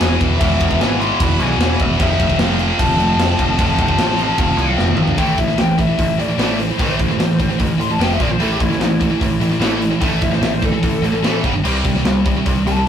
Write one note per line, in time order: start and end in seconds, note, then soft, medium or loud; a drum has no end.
0.00 0.15 E1 loud
0.00 0.38 E2 loud
0.00 0.39 E2 medium
0.00 0.39 B2 loud
0.00 0.40 B2 medium
0.00 0.39 E3 medium
0.00 0.40 E3 loud
0.00 0.18 B3 medium
0.00 0.18 G#5 medium
0.00 snare loud
0.00 crash medium
0.21 0.35 E1 medium
0.21 kick medium
0.21 crash medium
0.39 0.55 E1 loud
0.39 0.99 E2 medium
0.39 0.99 B2 loud
0.39 0.78 G#3 medium
0.39 0.80 E5 loud
0.39 kick loud
0.39 crash medium
0.43 0.99 E3 medium
0.61 0.75 E1 medium
0.61 kick loud
0.61 crash medium
0.71 kick medium
0.80 1.09 G#1 medium
0.80 0.99 B3 medium
0.80 1.01 G#5 loud
0.80 snare loud
0.80 crash medium
1.00 1.99 E2 medium
1.00 1.99 B2 medium
1.00 1.98 E3 medium
1.00 1.19 E4 medium
1.00 1.20 C6 loud
1.00 crash medium
1.20 1.35 E1 medium
1.20 1.39 E4 medium
1.20 1.41 B5 loud
1.20 kick loud
1.20 crash medium
1.39 1.54 B1 medium
1.39 1.77 B3 medium
1.39 1.78 G#5 loud
1.39 crash medium
1.58 1.73 E1 medium
1.58 snare loud
1.58 crash medium
1.79 1.95 E1 loud
1.79 kick medium
1.79 crash medium
2.00 2.14 F1 loud
2.00 2.62 F2 medium
2.00 2.59 C3 medium
2.00 2.59 F3 loud
2.00 2.37 A3 medium
2.00 2.39 E5 medium
2.00 kick loud
2.00 crash medium
2.20 2.34 F1 medium
2.20 kick medium
2.20 crash medium
2.30 kick medium
2.38 2.68 F1 medium
2.38 2.77 A3 medium
2.38 2.76 F5 medium
2.38 snare medium
2.38 crash medium
2.59 3.56 F2 medium
2.59 3.58 C3 medium
2.59 3.58 F3 medium
2.59 crash medium
2.78 2.94 F1 loud
2.78 4.74 C4 medium
2.78 4.74 A5 medium
2.78 kick loud
2.78 crash loud
2.97 3.12 F1 medium
2.97 crash medium
3.16 3.32 F1 loud
3.16 snare loud
3.16 crash medium
3.39 3.53 F1 medium
3.39 kick medium
3.39 crash medium
3.58 3.73 F1 loud
3.58 4.17 F2 medium
3.58 4.18 C3 medium
3.58 4.16 F3 medium
3.58 kick loud
3.58 crash medium
3.79 3.93 F1 loud
3.79 kick medium
3.79 crash medium
3.89 kick medium
3.98 4.28 A1 loud
3.98 snare loud
3.98 crash medium
4.17 5.18 F2 medium
4.17 5.17 C3 medium
4.17 5.17 F3 medium
4.17 crash medium
4.38 4.53 F1 medium
4.38 kick loud
4.38 crash medium
4.57 4.72 C2 medium
4.57 crash medium
4.77 4.92 F1 medium
4.77 snare medium
4.88 high tom medium
4.95 5.11 G#1 medium
4.95 mid tom medium
5.07 floor tom medium
5.18 5.33 A1 medium
5.18 5.37 A2 medium
5.18 5.37 E3 medium
5.18 5.37 A3 medium
5.18 5.37 G5 medium
5.18 kick loud
5.18 open hi-hat medium
5.38 5.53 A1 medium
5.38 5.48 A2 medium
5.38 5.47 E3 medium
5.38 5.58 E5 medium
5.38 kick medium
5.38 open hi-hat medium
5.49 5.57 A2 medium
5.49 5.58 E3 medium
5.49 snare soft
5.58 5.88 A1 medium
5.58 5.76 A2 medium
5.58 5.76 E3 medium
5.58 5.78 G5 medium
5.58 snare loud
5.58 open hi-hat medium
5.78 5.88 A2 medium
5.78 5.88 E3 medium
5.78 6.18 E5 medium
5.78 kick medium
5.78 open hi-hat medium
5.89 5.97 A2 medium
5.89 5.98 E3 medium
5.98 6.14 A1 medium
5.98 6.16 A2 medium
5.98 6.17 E3 medium
5.98 kick medium
5.98 open hi-hat medium
6.17 6.33 A1 medium
6.17 6.27 A2 medium
6.17 6.27 E3 medium
6.17 6.58 D5 medium
6.17 open hi-hat medium
6.29 6.38 A2 medium
6.29 6.38 E3 medium
6.38 6.68 A1 medium
6.38 6.58 A2 medium
6.38 6.58 E3 loud
6.38 6.58 A3 loud
6.38 snare loud
6.38 open hi-hat medium
6.60 6.69 A2 medium
6.60 6.69 E3 medium
6.60 6.79 C5 medium
6.60 open hi-hat medium
6.71 6.79 A2 medium
6.71 6.80 E3 medium
6.79 6.94 A1 medium
6.79 6.98 A2 medium
6.79 6.98 E3 medium
6.79 6.99 A3 loud
6.79 7.59 C5 loud
6.79 kick loud
6.79 open hi-hat medium
6.99 7.14 A1 medium
6.99 7.09 A2 medium
6.99 7.09 E3 medium
6.99 kick medium
6.99 open hi-hat medium
7.10 7.18 A2 medium
7.10 7.18 E3 medium
7.10 snare soft
7.18 7.49 A1 medium
7.18 7.37 A2 medium
7.18 7.37 E3 medium
7.18 snare loud
7.18 open hi-hat medium
7.40 7.48 A2 medium
7.40 7.48 E3 medium
7.40 kick medium
7.40 open hi-hat medium
7.49 7.58 A2 medium
7.49 7.59 E3 medium
7.60 7.75 A1 medium
7.60 7.77 A2 medium
7.60 7.78 E3 medium
7.60 kick medium
7.60 open hi-hat medium
7.79 7.94 A1 medium
7.79 7.89 A2 medium
7.79 7.89 E3 medium
7.79 7.91 C6 medium
7.79 open hi-hat medium
7.90 8.00 A2 medium
7.90 8.00 E3 medium
7.90 8.00 A5 medium
7.99 8.14 F1 medium
7.99 8.19 F2 medium
7.99 8.19 C3 medium
7.99 8.19 F3 medium
7.99 8.13 G5 loud
7.99 snare loud
7.99 open hi-hat medium
8.13 8.21 E5 medium
8.20 8.35 A#1 medium
8.20 8.28 A#2 medium
8.20 8.29 F3 medium
8.20 8.29 A#3 medium
8.20 8.30 D5 medium
8.20 kick medium
8.20 open hi-hat medium
8.30 8.39 A#2 medium
8.30 8.40 F3 medium
8.30 8.42 C5 loud
8.39 8.54 A1 loud
8.39 8.59 A2 medium
8.39 8.58 E3 medium
8.39 8.59 A3 medium
8.39 8.50 A4 medium
8.39 open hi-hat medium
8.52 8.61 G4 medium
8.60 8.75 A1 medium
8.60 8.69 A2 medium
8.60 8.69 E3 medium
8.60 8.80 E4 medium
8.60 kick medium
8.60 open hi-hat medium
8.70 8.80 A2 medium
8.70 8.80 E3 medium
8.70 snare soft
8.79 9.10 A1 loud
8.79 8.99 A2 medium
8.79 8.99 E3 medium
8.79 9.99 E4 loud
8.79 snare loud
8.79 open hi-hat medium
9.01 9.10 A2 medium
9.01 9.10 E3 medium
9.01 kick medium
9.01 open hi-hat medium
9.11 9.20 A2 medium
9.11 9.20 E3 medium
9.21 9.36 A1 medium
9.21 9.39 A2 medium
9.21 9.39 E3 loud
9.21 kick medium
9.21 open hi-hat medium
9.40 9.56 A1 medium
9.40 9.50 A2 medium
9.40 9.50 E3 medium
9.40 open hi-hat medium
9.51 9.59 A2 medium
9.51 9.60 E3 medium
9.60 9.91 A1 loud
9.60 9.80 A2 medium
9.60 9.80 E3 medium
9.60 9.80 A3 loud
9.60 snare loud
9.60 open hi-hat medium
9.82 9.90 A2 medium
9.82 9.90 E3 medium
9.82 open hi-hat medium
9.91 9.99 A2 medium
9.91 10.00 E3 medium
10.00 10.17 A1 medium
10.00 10.20 A2 medium
10.00 10.20 E3 medium
10.00 10.21 A3 medium
10.00 kick loud
10.00 open hi-hat medium
10.21 10.37 A1 medium
10.21 10.31 A2 medium
10.21 10.30 E3 medium
10.21 10.32 E5 loud
10.21 kick medium
10.21 open hi-hat medium
10.31 10.40 A2 medium
10.31 10.40 E3 medium
10.31 10.42 C5 loud
10.31 snare soft
10.41 10.72 A1 medium
10.41 10.60 A2 medium
10.41 10.60 E3 medium
10.41 10.52 E5 loud
10.41 snare loud
10.41 open hi-hat medium
10.53 10.63 C5 medium
10.62 10.71 A2 medium
10.62 10.71 E3 medium
10.62 11.43 A4 medium
10.62 kick medium
10.62 open hi-hat medium
10.72 10.82 A2 medium
10.72 10.82 E3 medium
10.83 10.98 A1 medium
10.83 11.01 A2 medium
10.83 11.01 E3 medium
10.83 kick medium
10.83 open hi-hat medium
11.02 11.18 A1 medium
11.02 11.12 A2 medium
11.02 11.12 E3 medium
11.02 open hi-hat medium
11.13 11.23 A2 medium
11.13 11.23 E3 medium
11.23 11.39 A1 medium
11.23 11.43 A2 medium
11.23 11.43 E3 loud
11.23 11.43 A3 medium
11.23 snare loud
11.23 open hi-hat medium
11.44 11.59 G1 medium
11.44 11.53 G2 medium
11.44 11.53 D3 medium
11.44 11.53 G3 medium
11.44 kick medium
11.44 open hi-hat medium
11.54 11.65 G2 medium
11.54 11.63 D3 medium
11.64 11.80 C2 medium
11.64 11.83 C3 loud
11.64 11.83 G3 medium
11.64 11.84 C4 loud
11.64 crash loud
11.84 12.00 C2 medium
11.84 11.95 C3 medium
11.84 11.94 G3 medium
11.84 kick medium
11.84 open hi-hat medium
11.95 12.04 C3 medium
11.95 12.04 G3 medium
11.95 snare soft
12.04 12.36 C2 loud
12.04 12.23 C3 medium
12.04 12.23 G3 medium
12.04 snare loud
12.04 open hi-hat medium
12.26 12.36 C3 medium
12.26 12.36 G3 medium
12.26 kick medium
12.26 open hi-hat soft
12.37 12.46 C3 medium
12.37 12.46 G3 medium
12.46 12.62 C2 medium
12.46 12.65 C3 medium
12.46 12.65 G3 medium
12.46 kick medium
12.46 open hi-hat medium
12.66 12.81 C2 medium
12.66 12.77 C3 medium
12.66 12.77 G3 medium
12.66 12.88 A5 loud
12.66 open hi-hat medium
12.78 12.86 C3 medium
12.78 12.87 G3 medium